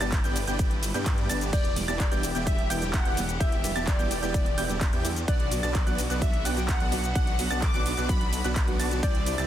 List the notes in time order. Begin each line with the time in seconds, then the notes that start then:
Already playing: G3 E4 B4
0.01 G1 B3 D4 G4 D5 A5 A6, closed hi-hat, cabasa
0.12 kick, clap, closed hi-hat, ride, cabasa
0.24 G1 B3 D4 G4 D5 G5 G6, closed hi-hat, cabasa
0.36 open hi-hat, ride, cabasa
0.47 G1 B3 D4 G4 D5 G5 G6, closed hi-hat, cabasa
0.59 kick, closed hi-hat, ride, cabasa
0.71 closed hi-hat
0.83 open hi-hat, ride, cabasa
0.94 G2 B3 D4 G4 D5 G5 G6, closed hi-hat, cabasa
1.06 kick, clap, closed hi-hat, ride, cabasa
1.18 closed hi-hat
1.29 G1 B3 D4 G4 D5 A5 A6, open hi-hat, ride, cabasa
1.41 closed hi-hat, cabasa
1.53 E1 E3 B3 D4 E4 G4 D5 G5 G6, kick, closed hi-hat, crash, ride, cabasa
1.65 closed hi-hat
1.76 D3 G3 B3 E4, open hi-hat, ride, cabasa
1.88 E1 B3 E4 G4 D5 A5 A6, closed hi-hat, cabasa
2.00 kick, clap, closed hi-hat, ride, cabasa
2.11 E1 D3 G3 B3 E4 G4 D5 G5 G6, closed hi-hat, cabasa
2.23 open hi-hat, ride, cabasa
2.35 E1 B3 E4 G4 D5 G5 G6, closed hi-hat, cabasa
2.46 D3 G3 B3 E4 E5, kick, closed hi-hat, ride, cabasa
2.58 closed hi-hat
2.70 E1 B3 E4 G4 D5 G5 G6, open hi-hat, ride, cabasa
2.81 D3 G3 B3 E4, closed hi-hat, cabasa
2.94 F#5, kick, clap, closed hi-hat, ride, cabasa
3.05 E1 B3 E4 G4 D5 G5 G6, closed hi-hat
3.16 D3 G3 B3 E4, open hi-hat, ride, cabasa
3.29 closed hi-hat, cabasa
3.40 E1 B3 E4 G4 D5 E5 G5 G6, kick, closed hi-hat, ride, cabasa
3.52 closed hi-hat
3.63 D3 G3 B3 E4, open hi-hat, ride, cabasa
3.76 E1 B3 E4 G4 D5 A5 A6, closed hi-hat, cabasa
3.87 D5, kick, clap, closed hi-hat, ride, cabasa
3.99 E1 D3 G3 B3 E4 G4 D5 G5 G6, closed hi-hat, cabasa
4.11 open hi-hat, ride, cabasa
4.22 E1 B3 E4 G4 D5 G5 G6, closed hi-hat, cabasa
4.34 D3 G3 B3 E4 D5, kick, closed hi-hat, ride, cabasa
4.46 closed hi-hat
4.58 E1 B3 E4 G4 D5 G5 G6, open hi-hat, ride, cabasa
4.69 D3 G3 B3 E4, closed hi-hat, cabasa
4.81 kick, clap, closed hi-hat, ride, cabasa
4.93 E2 B3 E4 G4 D5 G5 G6, closed hi-hat
5.04 D3 G3 B3 E4, open hi-hat, ride, cabasa
5.16 closed hi-hat, cabasa
5.28 B1 B3 D4 F#4 D5 F#5 F#6, kick, closed hi-hat, ride, cabasa
5.40 closed hi-hat
5.51 D3 F#3 B3 F#4, open hi-hat, ride, cabasa
5.63 B1 B3 D4 F#4 D5 A5 A6, closed hi-hat, cabasa
5.75 kick, clap, closed hi-hat, ride, cabasa
5.86 B1 D3 F#3 B3 D4 F#4 D5 F#5 F#6, closed hi-hat, cabasa
5.98 open hi-hat, ride, cabasa
6.10 B1 B3 D4 F#4 D5 F#5 F#6, closed hi-hat, cabasa
6.21 D3 F#3 B3 F#4 E5, kick, closed hi-hat, ride, cabasa
6.34 closed hi-hat
6.45 B1 B3 D4 F#4 D5 F#5 G5 F#6, open hi-hat, ride, cabasa
6.56 D3 F#3 B3 F#4, closed hi-hat, cabasa
6.69 F#5, kick, clap, closed hi-hat, ride, cabasa
6.80 B1 B3 D4 F#4 D5 F#5 F#6, closed hi-hat
6.91 D3 F#3 B3 F#4, open hi-hat, ride, cabasa
7.04 closed hi-hat, cabasa
7.15 B1 B3 D4 F#4 D5 F#5 F#6, kick, closed hi-hat, ride, cabasa
7.27 closed hi-hat
7.38 D3 F#3 B3 F#4, open hi-hat, ride, cabasa
7.51 B1 B3 D4 F#4 D5 A5 A6, closed hi-hat, cabasa
7.62 D6, kick, clap, closed hi-hat, ride, cabasa
7.74 B1 D3 F#3 B3 D4 F#4 D5 F#5 F#6, closed hi-hat, cabasa
7.86 open hi-hat, ride, cabasa
7.97 B1 B3 D4 F#4 D5 F#5 F#6, closed hi-hat, cabasa
8.09 D3 F#3 B3 F#4 B5, kick, closed hi-hat, ride, cabasa
8.21 closed hi-hat
8.33 open hi-hat, ride, cabasa
8.44 B1 D3 F#3 B3 D4 F#4 D5 F#5 F#6, closed hi-hat, cabasa
8.56 kick, clap, closed hi-hat, ride, cabasa
8.67 D3 F#3 B3 F#4, closed hi-hat
8.80 B1 B3 D4 F#4 D5 A5 A6, open hi-hat, ride, cabasa
8.91 D3 F#3 B3 F#4, closed hi-hat, cabasa
9.03 C2 C4 E4 G4 D5 G5 G6, kick, closed hi-hat, ride, cabasa
9.15 closed hi-hat
9.26 D3 G3 C4 E4, open hi-hat, ride, cabasa
9.38 C2 C4 E4 G4 D5 A5 A6, closed hi-hat, cabasa